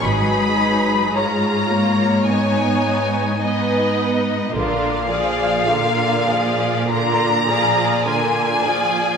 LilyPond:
<<
  \new Staff \with { instrumentName = "Violin section" } { \time 4/4 \key bes \phrygian \tempo 4 = 53 ces'''4 bes''4 aes''4. r8 | f''2 bes''4 aes''4 | }
  \new Staff \with { instrumentName = "Violin section" } { \time 4/4 \key bes \phrygian <aes' ces''>4 des''2 <ces'' ees''>4 | <f' bes'>8 <aes' d''>8 <f' bes'>8 <aes' d''>8 <f' bes'>8 <aes' d''>8 <f' bes'>8 <aes' d''>8 | }
  \new Staff \with { instrumentName = "Viola section" } { \time 4/4 \key bes \phrygian << { ees'4 f'4 ees'4 ees'4 | d'8 f'8 d'8 f'8 d'8 f'8 d'8 f'8 | } \\ { ges4 aes8 bes8 ces'4 ces'4 | d8 f8 d8 f8 d8 f8 d8 f8 | } >> }
  \new Staff \with { instrumentName = "Cello section" } { \clef bass \time 4/4 \key bes \phrygian aes,1 | bes,1 | }
  \new Staff \with { instrumentName = "Double bass section" } { \clef bass \time 4/4 \key bes \phrygian aes,,4 r2. | bes,,4 r2. | }
>>